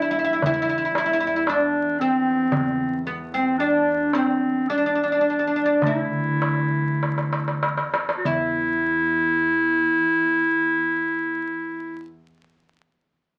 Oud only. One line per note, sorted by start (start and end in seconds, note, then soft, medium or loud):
0.02 0.09 E4 medium
0.11 0.17 E4 medium
0.19 0.23 E4 medium
0.25 0.31 E4 medium
0.33 0.39 E4 medium
0.46 0.52 E4 medium
0.54 0.60 E4 medium
0.62 0.68 E4 medium
0.69 0.75 E4 medium
0.78 0.83 E4 medium
0.85 0.91 E4 medium
0.98 1.04 E4 medium
1.06 1.12 E4 medium
1.13 1.19 E4 medium
1.21 1.26 E4 medium
1.27 1.34 E4 medium
1.36 1.42 E4 medium
1.49 2.02 D4 medium
2.01 3.06 C4 medium
3.07 3.34 B3 medium
3.34 3.59 C4 medium
3.60 4.16 D4 medium
4.15 4.72 C4 medium
4.70 4.76 D4 medium
4.78 4.85 D4 medium
4.86 4.94 D4 medium
4.95 5.02 D4 soft
5.04 5.11 D4 medium
5.12 5.20 D4 medium
5.21 5.29 D4 medium
5.30 5.38 D4 soft
5.39 5.46 D4 soft
5.47 5.55 D4 soft
5.56 5.63 D4 medium
5.66 5.72 D4 medium
5.87 7.61 E4 medium
8.26 12.07 E4 medium